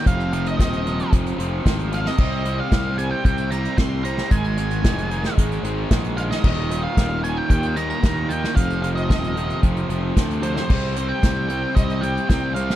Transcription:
<<
  \new Staff \with { instrumentName = "Glockenspiel" } { \time 4/4 \key f \dorian \tempo 4 = 113 f'''8 f'''16 ees'''16 ees'''4 r4. f'''16 ees'''16~ | ees'''8. f'''8. aes'''16 g'''16 g'''8 bes'''8 c''''8 bes'''8 | aes'''2 r4. f'''16 ees'''16~ | ees'''8. f'''8. aes'''16 g'''16 g'''8 bes'''16 bes'''8. g'''8 |
f'''8 f'''16 ees'''16 ees'''4 r4. c'''16 c'''16~ | c'''8. g'''8. g'''8 ees'''8 g'''8 g'''8 f'''8 | }
  \new Staff \with { instrumentName = "Lead electric guitar" } { \time 4/4 \key f \dorian f''8 f''16 ees''16 ees''4 r4. f''16 ees''16~ | ees''8. f''8. aes''16 g''16 g''8 bes''8 c'''8 bes''8 | aes''2 r4. f''16 ees''16~ | ees''8. f''8. aes''16 g''16 g''8 bes''16 bes''8. g''8 |
f''8 f''16 ees''16 ees''4 r4. c''16 c''16~ | c''8. g''8. g''8 ees''8 g''8 g''8 f''8 | }
  \new Staff \with { instrumentName = "Overdriven electric guitar" } { \clef bass \time 4/4 \key f \dorian <f, c f>8 <f, c f>8 <f, c f>8 <f, c f>8 <f, c f>8 <f, c f>8 <f, c f>8 <f, c f>8 | <c g c'>8 <c g c'>8 <c g c'>8 <c g c'>8 <c g c'>8 <c g c'>8 <c g c'>8 <c g c'>8 | <aes, ees aes>8 <aes, ees aes>8 <aes, ees aes>8 <aes, ees aes>8 <aes, ees aes>8 <aes, ees aes>8 <aes, ees aes>8 <aes, ees aes>8 | <ees, bes, ees>8 <ees, bes, ees>8 <ees, bes, ees>8 <ees, bes, ees>8 <ees, bes, ees>8 <ees, bes, ees>8 <ees, bes, ees>8 <ees, bes, ees>8 |
<f, c f>8 <f, c f>8 <f, c f>8 <f, c f>8 <f, c f>8 <f, c f>8 <f, c f>8 <f, c f>8 | <c g c'>8 <c g c'>8 <c g c'>8 <c g c'>8 <c g c'>8 <c g c'>8 <c g c'>8 <c g c'>8 | }
  \new Staff \with { instrumentName = "Overdriven electric guitar" } { \clef bass \time 4/4 \key f \dorian <f, c f>8 <f, c f>8 <f, c f>8 <f, c f>8 <f, c f>8 <f, c f>8 <f, c f>8 <f, c f>8 | <c g c'>8 <c g c'>8 <c g c'>8 <c g c'>8 <c g c'>8 <c g c'>8 <c g c'>8 <c g c'>8 | <aes, ees aes>8 <aes, ees aes>8 <aes, ees aes>8 <aes, ees aes>8 <aes, ees aes>8 <aes, ees aes>8 <aes, ees aes>8 <aes, ees aes>8 | <ees, bes, ees>8 <ees, bes, ees>8 <ees, bes, ees>8 <ees, bes, ees>8 <ees, bes, ees>8 <ees, bes, ees>8 <ees, bes, ees>8 <ees, bes, ees>8 |
<f, c f>8 <f, c f>8 <f, c f>8 <f, c f>8 <f, c f>8 <f, c f>8 <f, c f>8 <f, c f>8 | <c g c'>8 <c g c'>8 <c g c'>8 <c g c'>8 <c g c'>8 <c g c'>8 <c g c'>8 <c g c'>8 | }
  \new Staff \with { instrumentName = "Fingered electric bass" } { \clef bass \time 4/4 \key f \dorian f,,4 ees,,4 f,,8 f,,8 aes,,4 | c,4 c,4 c,4 c,4 | aes,,4 f,,4 aes,,8 aes,,8 bes,,4 | ees,,4 ees,,4 ees,4 ees,4 |
f,,4 ees,,4 f,,8 f,,8 d,4 | c,4 c,4 c,4 c,4 | }
  \new DrumStaff \with { instrumentName = "Drums" } \drummode { \time 4/4 <hh bd>16 hh16 hh16 hh16 <hh bd sn>16 hh16 hh16 hh16 <hh bd>16 hh16 hh8 <hh bd sn>16 hh16 hh16 sn16 | <cymc bd>8 hh8 <hh bd sn>8 hh8 <hh bd>16 hh16 hh16 hh16 <hh bd sn>8 hh16 sn16 | <hh bd>16 hh16 hh16 hh16 <hh bd sn>16 hh16 hh16 <hh sn>16 <hh bd>16 hh16 hh8 <hh bd sn>16 hh16 hh16 sn16 | <cymc bd>8 hh8 <hh bd sn>8 hh8 <hh bd>16 hh16 hh16 hh16 <hh bd sn>8 hh16 sn16 |
<hh bd>16 hh16 hh16 hh16 <hh bd sn>16 hh16 hh16 hh16 <hh bd>16 hh16 hh8 <hh bd sn>16 hh16 hh16 sn16 | <cymc bd>8 hh8 <hh bd sn>8 hh8 <hh bd>16 hh16 hh16 hh16 <hh bd sn>8 hh16 sn16 | }
>>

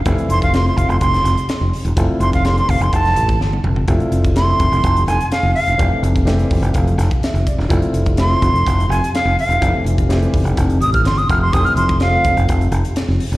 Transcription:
<<
  \new Staff \with { instrumentName = "Flute" } { \time 4/4 \key f \major \tempo 4 = 126 r8 c'''16 f''16 c'''16 c'''16 f''16 c'''16 c'''4 r4 | r8 c'''16 f''16 c'''16 c'''16 f''16 c'''16 a''4 r4 | r4 c'''4. aes''8 f''8 f''8~ | f''8 r2. r8 |
r4 c'''4. aes''8 f''8 f''8~ | f''8 r2 ees'''16 f'''16 c'''16 ees'''16 f'''16 c'''16 | ees'''16 f'''16 c'''8 f''4 r2 | }
  \new Staff \with { instrumentName = "Grand piano" } { \time 4/4 \key f \major r1 | r1 | r1 | r4. g''8 f''4 e''8 d''8 |
r1 | r1 | r1 | }
  \new Staff \with { instrumentName = "Grand piano" } { \time 4/4 \key f \major <e g a c' e'>4 <g a c' e' f'>4. r4. | <g a c' e' f'>4 <e g a c' g'>4. r4. | <g a c' e' f'>4 <e g a c' e'>4. r4. | <e g a c' d'>4 <e g a c' g'>4. r4. |
<g a c' e' f'>4 <g a c' e' f'>4. r4. | <e g a c' d'>4 <e g a c' g'>4. r4. | <e g a c' g'>4 <f g a c' f'>4. r4. | }
  \new Staff \with { instrumentName = "Fingered electric bass" } { \clef bass \time 4/4 \key f \major f,,16 r16 f,,4 f,,16 f,,16 f,,8 f,,16 r8 f,,16 r16 e,,16 | f,,16 r16 f,,4 f,,16 f,,16 f,,8 a,,8 g,,8 f,,8 | f,,16 r16 f,,4 f,,16 f,,16 f,,8 f,,16 r8 f,,16 r16 e,,16 | f,,16 r16 f,,4 f,,16 f,,16 f,,8 f,,16 r8 f,,16 r16 e,,16 |
f,,16 r16 f,,4 f,,16 f,,16 f,,8 f,,16 r8 f,,16 r16 e,,16 | f,,16 r16 f,,4 f,,16 f,,16 f,,8 a,,8 g,,8 f,,8 | f,,16 r16 f,,4 f,,16 f,,16 f,,8 f,,16 r8 f,,16 r16 e,,16 | }
  \new DrumStaff \with { instrumentName = "Drums" } \drummode { \time 4/4 <hh bd>16 hh16 hh16 <hh bd>16 <hh sn>8 <hh bd>16 hh16 <hh bd>16 <hh sn>16 <hh sn>16 hh16 <hh sn>8 hho16 hh16 | <hh bd>8 hh16 <hh bd sn>16 <hh sn>16 hh16 <hho bd>16 hh16 <hh bd>16 <hh sn>16 hh16 <hh bd>16 sn16 tommh16 toml16 tomfh16 | <hh bd>16 hh16 hh16 <hh bd>16 <hh sn>16 sn16 <hh bd>16 hh16 <hh bd>16 hh16 hh16 hh16 <hh sn>8 hho16 hh16 | <hh bd>8 hh16 <hh bd>16 <hh sn>16 hh16 <hho bd>16 hh16 <hh bd>16 hh16 <hh sn>16 <hh bd>16 <hh sn>16 <hh sn>16 <hh bd>16 sn16 |
<hh bd>16 hh16 hh16 <hh bd>16 <hh sn>16 sn16 <hh bd>16 hh16 <hh bd>16 hh16 hh16 hh16 <hh sn>8 hho16 hh16 | <hh bd>8 hh16 <hh bd>16 <hh sn>16 hh16 <hho bd>16 hh16 <hh bd>16 hh16 hh16 <hh bd>16 <hh sn>16 hh16 <hh bd>8 | <hh bd>16 hh16 hh16 <hh bd>16 <hh sn>8 <hh bd>16 hh16 <hh bd>16 hh16 hh16 hh16 <hh sn>16 sn16 hho16 <hh sn>16 | }
>>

